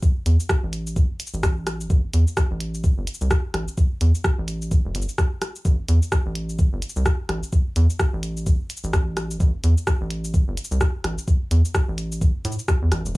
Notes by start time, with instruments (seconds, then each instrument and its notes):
0.03 kick, shaker
0.26 analog synth bass E2, closed hi-hat, shaker
0.40 shaker
0.49 kick, cross-stick, shaker
0.63 analog synth bass A1
0.73 closed hi-hat, shaker
0.87 shaker
0.96 kick, shaker
1.20 closed hi-hat, shaker
1.27 shaker
1.34 analog synth bass A1, shaker
1.43 kick, cross-stick, shaker
1.67 cross-stick, closed hi-hat, shaker
1.81 shaker
1.90 analog synth bass A1, kick, shaker
2.14 analog synth bass E2, closed hi-hat, shaker
2.27 shaker
2.37 kick, cross-stick, shaker
2.51 analog synth bass A1
2.60 closed hi-hat
2.74 shaker
2.84 kick, shaker
2.98 analog synth bass G1
3.07 closed hi-hat, shaker
3.14 shaker
3.21 analog synth bass C2, shaker
3.31 kick, cross-stick, shaker
3.54 analog synth bass A1, cross-stick, closed hi-hat
3.68 shaker
3.78 kick, shaker
4.01 analog synth bass E2, closed hi-hat, shaker
4.15 shaker
4.24 kick, cross-stick, shaker
4.38 analog synth bass A1
4.48 closed hi-hat, shaker
4.62 shaker
4.71 kick, shaker
4.85 analog synth bass E1
4.95 analog synth bass G1, closed hi-hat, shaker
5.02 shaker
5.09 shaker
5.18 kick, cross-stick, shaker
5.42 cross-stick, closed hi-hat, shaker
5.56 shaker
5.65 analog synth bass A1, kick, shaker
5.89 analog synth bass E2, closed hi-hat, shaker
6.02 shaker
6.12 kick, cross-stick, shaker
6.26 analog synth bass A1
6.35 closed hi-hat
6.49 shaker
6.59 kick, shaker
6.73 analog synth bass G1
6.82 closed hi-hat, shaker
6.89 shaker
6.96 analog synth bass C2, shaker
7.06 kick, cross-stick, shaker
7.29 analog synth bass A1, cross-stick, closed hi-hat
7.43 shaker
7.53 kick, shaker
7.76 analog synth bass E2, closed hi-hat, shaker
7.90 shaker
8.00 kick, cross-stick, shaker
8.13 analog synth bass A1
8.23 closed hi-hat, shaker
8.37 shaker
8.46 kick, shaker
8.70 closed hi-hat, shaker
8.77 shaker
8.84 analog synth bass A1, shaker
8.93 kick, cross-stick, shaker
9.17 cross-stick, closed hi-hat, shaker
9.31 shaker
9.40 analog synth bass A1, kick, shaker
9.64 analog synth bass E2, closed hi-hat, shaker
9.78 shaker
9.87 kick, cross-stick, shaker
10.01 analog synth bass A1
10.11 closed hi-hat
10.24 shaker
10.34 kick, shaker
10.48 analog synth bass G1
10.57 closed hi-hat, shaker
10.64 shaker
10.71 analog synth bass C2, shaker
10.81 kick, cross-stick, shaker
11.04 analog synth bass A1, cross-stick, closed hi-hat
11.18 shaker
11.28 kick, shaker
11.51 analog synth bass E2, closed hi-hat, shaker
11.65 shaker
11.75 kick, cross-stick, shaker
11.88 analog synth bass A1
11.98 closed hi-hat, shaker
12.12 shaker
12.21 kick, shaker
12.45 analog synth bass A2, closed hi-hat, shaker
12.52 shaker
12.59 shaker
12.68 kick, cross-stick, shaker
12.82 analog synth bass E2
12.92 analog synth bass A1, cross-stick, closed hi-hat, shaker
13.06 analog synth bass E1, shaker